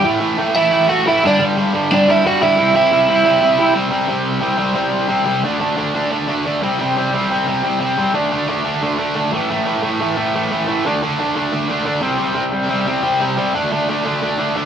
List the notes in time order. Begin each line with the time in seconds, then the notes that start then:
0.04 A2 E3 A3
0.20 A2 E3 A3
0.37 A2 E3 A3
0.56 A2 E3 A3 E4 E5
0.71 A2 E3 A3
0.89 A2 E3 A3 F#4 F#5
1.06 A2 E3 A3 E4 E5
1.24 G2 D3 G3 D4 D5
1.39 G2 D3 G3
1.57 G2 D3 G3
1.74 G2 D3 G3
1.91 G2 D3 G3 D4 D5
2.08 G2 D3 G3 E4 E5
2.25 G2 D3 G3 F#4 F#5
2.42 G2 D3 G3 E4 E5
2.57 C3 G3 C4
2.74 C3 G3 C4 E4 E5
2.92 C3 G3 C4
3.09 C3 G3 C4
3.25 C3 G3 C4
3.42 C3 G3 C4
3.58 C3 G3 C4
3.74 C3 G3 C4
3.91 C3 G3 C4
4.08 C3 G3 C4
4.42 C3 G3 C4
4.58 C3 G3 C4
4.75 C3 G3 C4
5.08 C3 G3 C4
5.25 C3 G3 C4
5.44 D3 A3 D4
5.61 D3 A3 D4
5.78 D3 A3 D4
5.95 D3 A3 D4
6.11 D3 A3 D4
6.28 D3 A3 D4
6.46 D3 A3 D4
6.62 C3 G3 C4
6.79 C3 G3 C4
6.96 C3 G3 C4
7.14 C3 G3 C4
7.31 C3 G3 C4
7.48 C3 G3 C4
7.64 C3 G3 C4
7.80 C3 G3 C4
7.98 C3 G3 C4
8.14 D3 A3 D4
8.32 D3 A3 D4
8.48 D3 A3 D4
8.65 D3 A3 D4
8.82 D3 A3 D4
8.98 D3 A3 D4
9.15 D3 A3 D4
9.32 A2 E3 A3
9.50 A2 E3 A3
9.66 A2 E3 A3
9.83 A2 E3 A3
10.01 A2 E3 A3
10.18 A2 E3 A3
10.36 A2 E3 A3
10.52 A2 E3 A3
10.68 A2 E3 A3
10.85 D3 A3 D4
11.03 D3 A3 D4
11.19 D3 A3 D4
11.36 D3 A3 D4
11.53 D3 A3 D4
11.69 D3 A3 D4
11.85 D3 A3 D4
12.01 C3 G3 C4
12.18 C3 G3 C4
12.35 C3 G3 C4
12.52 C3 G3 C4
12.69 C3 G3 C4
12.87 C3 G3 C4
13.03 C3 G3 C4
13.21 C3 G3 C4
13.37 C3 G3 C4
13.54 D3 A3 D4
13.72 D3 A3 D4
13.88 D3 A3 D4
14.05 D3 A3 D4
14.21 D3 A3 D4
14.39 D3 A3 D4
14.56 D3 A3 D4